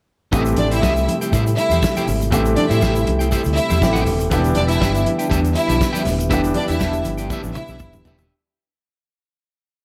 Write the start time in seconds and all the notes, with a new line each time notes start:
0.32 A1 C3 E3 G3 A3 C4 E4 G4 C5 E5, kick, closed hi-hat, muted conga, low conga, shaker
0.45 muted clean electric guitar stroke, closed hi-hat, shaker
0.56 A1 D4 D5, muted clean electric guitar stroke, closed hi-hat, muted conga, high conga
0.71 E4 G4 C5 E5, closed hi-hat, shaker
0.81 C2 E4 G4 C5 E5, kick, snare, muted conga, high conga, shaker
0.96 muted clean electric guitar stroke, closed hi-hat, shaker
1.07 muted clean electric guitar stroke, closed hi-hat, muted conga, high conga
1.21 E4 G4 C5 G5, closed hi-hat, shaker
1.32 A2 E4 G4 C5 E5, kick, closed hi-hat, muted conga, low conga, shaker
1.46 muted clean electric guitar stroke, closed hi-hat, shaker
1.57 E4 E5, muted clean electric guitar stroke, closed hi-hat, muted conga, shaker
1.70 E2 E4 G4 C5 E5, closed hi-hat, high conga, shaker
1.83 muted clean electric guitar stroke, kick, snare, muted conga, shaker
1.96 E4 G4 C5 G5, closed hi-hat, high conga, shaker
2.07 G#1, muted clean electric guitar stroke, open hi-hat, low conga, shaker
2.20 muted clean electric guitar stroke, closed hi-hat, shaker
2.30 A1 E3 A3 C4 E4 G4 C5 E5, kick, closed hi-hat, low conga, shaker
2.45 muted clean electric guitar stroke, closed hi-hat, shaker
2.56 D4 D5, muted clean electric guitar stroke, closed hi-hat, muted conga, high conga
2.68 A2 E4 G4 C5 E5, closed hi-hat, shaker
2.81 A1 E4 G4 C5 E5, kick, snare, high conga, shaker
2.96 muted clean electric guitar stroke, closed hi-hat, shaker
3.06 C2, muted clean electric guitar stroke, closed hi-hat, muted conga, high conga
3.19 E4 G4 C5 G5, closed hi-hat, shaker
3.31 E4 G4 C5 E5, kick, closed hi-hat, low conga, shaker
3.44 D2, muted clean electric guitar stroke, closed hi-hat, shaker
3.55 E4 E5, muted clean electric guitar stroke, closed hi-hat, shaker
3.69 E2 E4 G4 C5 E5, closed hi-hat, high conga, shaker
3.81 A1 E3 A3 C4 G4, muted clean electric guitar stroke, kick, snare, shaker
3.93 E4 G4 C5 G5, closed hi-hat, high conga, shaker
4.05 D#1, muted clean electric guitar stroke, open hi-hat, muted conga, low conga, shaker
4.19 muted clean electric guitar stroke, closed hi-hat, shaker
4.30 E1 D3 E3 G3 B3 D4 G4 B4 E5, kick, closed hi-hat, muted conga, low conga, shaker
4.44 muted clean electric guitar stroke, closed hi-hat, shaker
4.55 E1 D4 D5, muted clean electric guitar stroke, closed hi-hat, muted conga, high conga
4.68 D4 E4 G4 B4 E5, closed hi-hat, shaker
4.79 G1 D4 G4 B4 E5, kick, snare, high conga, shaker
4.92 muted clean electric guitar stroke, closed hi-hat, shaker
5.04 muted clean electric guitar stroke, closed hi-hat, muted conga, high conga
5.19 D4 G4 B4 G5, closed hi-hat, shaker
5.30 E2 D4 G4 B4 E5, kick, closed hi-hat, low conga, shaker
5.42 muted clean electric guitar stroke, closed hi-hat, shaker
5.53 E4 E5, muted clean electric guitar stroke, closed hi-hat
5.58 shaker
5.67 B1 D4 G4 B4 E5, closed hi-hat, high conga, shaker
5.78 muted clean electric guitar stroke, kick, snare, muted conga, shaker
5.93 D4 G4 B4 G5, closed hi-hat, high conga, shaker
6.05 D#1, muted clean electric guitar stroke, snare, open hi-hat, low conga, shaker
6.19 muted clean electric guitar stroke, closed hi-hat, shaker
6.29 E1 E3 B3 D4 G4 B4 E5, kick, closed hi-hat, muted conga, low conga, shaker
6.33 G4
6.44 muted clean electric guitar stroke, closed hi-hat, shaker
6.54 D4 D5, muted clean electric guitar stroke, closed hi-hat, muted conga, high conga
6.68 E2 D4 E4 G4 B4 E5, closed hi-hat, shaker
6.79 E1 D4 G4 B4 E5, kick, snare, muted conga, high conga, shaker
6.93 muted clean electric guitar stroke, closed hi-hat, shaker
7.04 G1, muted clean electric guitar stroke, closed hi-hat, muted conga, high conga, shaker
7.18 D4 G4 B4 G5, closed hi-hat, shaker
7.30 D4 G4 B4 E5, kick, high tom, muted conga, low conga, shaker
7.44 A1, muted clean electric guitar stroke, high tom, shaker
7.53 E4 E5, muted clean electric guitar stroke, mid tom, shaker
7.68 B1 D4 G4 B4 E5, high conga, shaker
7.79 E1, muted clean electric guitar stroke, kick, mid tom, muted conga, shaker
7.93 muted clean electric guitar stroke, mid tom, high conga, shaker
8.05 D#1 D4 G4 B4 E5, floor tom, muted conga, low conga, shaker
8.18 D4 G4 B4 E5, floor tom, shaker